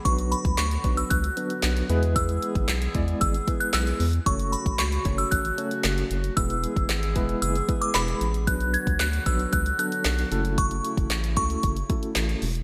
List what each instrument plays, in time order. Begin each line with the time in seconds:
Already playing: woodwind section B3
0.05 analog synth bass B1, woodwind section D3 F#3 F#4, tine electric piano F#3 B3 D4 F#4 B4, synth bell C#6, kick, closed hi-hat
0.18 closed hi-hat
0.32 synth bell B5, closed hi-hat
0.45 analog synth bass C#2, kick, closed hi-hat
0.58 analog synth bass D2, synth bell C#6, snare, clap, closed hi-hat
0.71 closed hi-hat
0.84 analog synth bass B1, tine electric piano F#3 B3 D4 F#4 B4, kick, closed hi-hat
0.97 synth bell E6, closed hi-hat
1.10 analog synth bass C#2, synth bell F#6, kick, closed hi-hat
1.24 closed hi-hat
1.37 tine electric piano F#3 B3 D4 F#4 B4, closed hi-hat
1.50 closed hi-hat
1.63 analog synth bass B1, snare, clap, closed hi-hat
1.77 closed hi-hat
1.89 analog synth bass E2, woodwind section E3 G#3 B3 G#4, tine electric piano G#3 B3 E4 G#4 B4, closed hi-hat
2.03 closed hi-hat
2.16 synth bell E6, kick, closed hi-hat
2.29 closed hi-hat
2.42 closed hi-hat
2.55 analog synth bass G#1, kick, closed hi-hat
2.68 analog synth bass B1, snare, clap, closed hi-hat
2.82 closed hi-hat
2.95 analog synth bass E2, tine electric piano G#3 B3 E4 G#4 D5, kick, closed hi-hat
3.08 closed hi-hat
3.21 analog synth bass G#1, synth bell E6, kick, closed hi-hat
3.34 closed hi-hat
3.47 tine electric piano G#3 B3 E4 G#4 B4, kick, closed hi-hat
3.60 synth bell F#6, closed hi-hat
3.73 analog synth bass B1, synth bell E6, snare, clap, closed hi-hat
3.87 closed hi-hat
4.00 analog synth bass E2, open hi-hat
4.13 closed hi-hat
4.26 analog synth bass F#1, woodwind section C#3 F#3 A3 F#4, tine electric piano A3 C#4 F#4 A4 C#5, synth bell C#6, kick, closed hi-hat
4.39 closed hi-hat
4.52 synth bell B5, closed hi-hat
4.66 analog synth bass A1, kick, closed hi-hat
4.79 analog synth bass C#2, synth bell C#6, snare, clap, closed hi-hat
4.92 closed hi-hat
5.05 analog synth bass F#1, tine electric piano A3 C#4 F#4 A4 C#5, kick, closed hi-hat
5.18 synth bell E6, closed hi-hat
5.31 analog synth bass A1, synth bell F#6, kick, closed hi-hat
5.45 closed hi-hat
5.58 tine electric piano A3 C#4 F#4 A4 C#5, closed hi-hat
5.71 closed hi-hat
5.84 analog synth bass F#1, snare, clap, closed hi-hat
5.98 closed hi-hat
6.11 analog synth bass F#1, closed hi-hat
6.24 closed hi-hat
6.37 analog synth bass E1, woodwind section E3 G#3 B3 G#4, tine electric piano G#3 B3 E4 G#4 B4, synth bell E6, kick, closed hi-hat
6.50 closed hi-hat
6.64 closed hi-hat
6.76 analog synth bass F#1, kick, closed hi-hat
6.89 analog synth bass G#1, snare, clap, closed hi-hat
7.03 closed hi-hat
7.15 analog synth bass E1, tine electric piano G#3 B3 E4 G#4 B4, kick, closed hi-hat
7.29 closed hi-hat
7.42 analog synth bass F#1, synth bell E6, closed hi-hat
7.55 closed hi-hat
7.68 tine electric piano G#3 B3 E4 G#4 B4, kick, closed hi-hat
7.81 synth bell D6, closed hi-hat
7.94 analog synth bass E1, synth bell B5, snare, clap, closed hi-hat
8.08 closed hi-hat
8.21 analog synth bass A1, closed hi-hat
8.34 closed hi-hat
8.47 analog synth bass B1, woodwind section D3 F#3 F#4, tine electric piano F#3 B3 D4 F#4 B4, synth bell F#6, kick, closed hi-hat
8.61 closed hi-hat
8.74 synth bell G#6, closed hi-hat
8.87 analog synth bass C#2, kick, closed hi-hat
9.00 analog synth bass D2, synth bell F#6, snare, clap, closed hi-hat
9.13 closed hi-hat
9.26 analog synth bass B1, tine electric piano F#3 B3 D4 F#4 B4, synth bell E6, kick, closed hi-hat
9.39 closed hi-hat
9.53 analog synth bass C#2, synth bell F#6, kick, closed hi-hat
9.66 closed hi-hat
9.79 tine electric piano F#3 B3 D4 F#4 A4, synth bell F#6, closed hi-hat
9.92 closed hi-hat
10.05 analog synth bass B1, snare, clap, closed hi-hat
10.19 closed hi-hat
10.31 analog synth bass F#1, woodwind section C#3 A3 E4, tine electric piano A3 C#4 E4 F#4 A4, closed hi-hat
10.45 closed hi-hat
10.58 synth bell C#6, kick, closed hi-hat
10.71 closed hi-hat
10.85 closed hi-hat
10.97 analog synth bass F#1, kick, closed hi-hat
11.10 analog synth bass A1, snare, clap, closed hi-hat
11.24 closed hi-hat
11.37 analog synth bass C#2, tine electric piano A3 C#4 E4 F#4 A4, synth bell C#6, kick, closed hi-hat
11.50 closed hi-hat
11.63 analog synth bass F#1, kick, closed hi-hat
11.76 closed hi-hat
11.89 tine electric piano A3 C#4 E4 F#4 A4, kick, closed hi-hat
12.03 closed hi-hat
12.15 analog synth bass A1, snare, clap, closed hi-hat
12.29 closed hi-hat
12.42 analog synth bass E1, open hi-hat
12.55 closed hi-hat